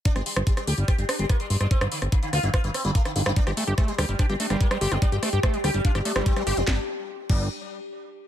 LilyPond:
<<
  \new Staff \with { instrumentName = "Synth drone" } { \time 4/4 \key c \dorian \tempo 4 = 145 r1 | r1 | g'1~ | g'1 |
r1 | }
  \new Staff \with { instrumentName = "Acid bass" } { \clef bass \time 4/4 \key c \dorian r1 | r1 | g16 g'16 a16 g'16 a16 g16 g16 g16 d'16 g'16 a16 g16 g16 g16 g'16 g16 | g16 g'16 a16 g'16 a16 g16 g16 g16 d'16 g'16 a16 g16 g16 g16 g'16 g16 |
g16 r4 r16 g8 r2 | }
  \new Staff \with { instrumentName = "Sitar" } { \time 4/4 \key c \dorian d'8 r4 g'8 g'8 d'8 bes8 r8 | c'8 r4 f'8 f'8 c'8 a8 r8 | d'8 r4 g'8 g'8 d'8 bes8 r8 | d'8 r4 g'8 f'8 d'8 c'8 r8 |
d'8 r4 d'8 r2 | }
  \new Staff \with { instrumentName = "Sitar" } { \clef bass \time 4/4 \key c \dorian r16 g16 g16 r16 g16 g16 r16 g16 r16 g16 r16 g16 r16 g16 g16 g16 | r16 d16 d16 r16 d16 d16 r16 d16 r16 d16 r16 d16 r16 d16 d16 d16 | r16 g16 g16 r16 g16 g16 r16 g16 r16 g16 r16 g16 r16 g16 g16 g16 | r16 g16 g16 r16 g16 g16 r16 g16 r16 g16 r16 g16 r16 g16 g16 g16 |
r1 | }
  \new Staff \with { instrumentName = "Analog synth bass" } { \clef bass \time 4/4 \key c \dorian r16 g,,16 r16 g,,16 r8 d,16 g,,16 r16 g,,16 r16 g,,16 r8 g,,16 g,,16 | r16 g,,16 r16 g,,16 r8 d,16 g,,16 r16 g,,16 r16 g,,16 r8 g,,16 g,,16 | r16 g,,16 r16 g,,16 r8 d,16 g,,16 r16 g,,16 r16 g,,16 r8 g,,16 g,,16 | r16 g,,16 r16 g,,16 r8 d,16 g,,16 r16 g,,16 r16 g,,16 r8 g,,16 f,,16 |
g,,16 r4 r16 g,,8 r2 | }
  \new DrumStaff \with { instrumentName = "Drums" } \drummode { \time 4/4 <hh bd>16 <hh ss>16 hho16 <hh ss>16 <hh bd>16 <hh ss>16 hho16 hh16 <hh bd ss>16 hh16 <hho ss>16 hh16 <hh bd ss>16 hh16 hho16 <hh ss>16 | <hh bd>16 <hh ss>16 hho16 <hh ss>16 <hh bd>16 hh16 <hho ss>16 hh16 <hh bd ss>16 hh16 <hho ss>16 hh16 <hh bd>16 <hh ss>16 hho16 <hh ss>16 | <hh bd>16 <hh ss>16 hho16 hh16 <hh bd ss>16 hh16 <hho ss>16 hh16 <hh bd ss>16 hh16 hho16 <hh ss>16 <hh bd>16 <hh ss>16 hho16 <hh ss>16 | <hh bd>16 hh16 <hho ss>16 hh16 <hh bd ss>16 hh16 <hho ss>16 hh16 <hh bd>16 <hh ss>16 hho16 <hh ss>16 <hh bd>16 <hh ss>16 hho16 hh16 |
<bd sn>4 r8 <cymc bd>8 r4 r4 | }
>>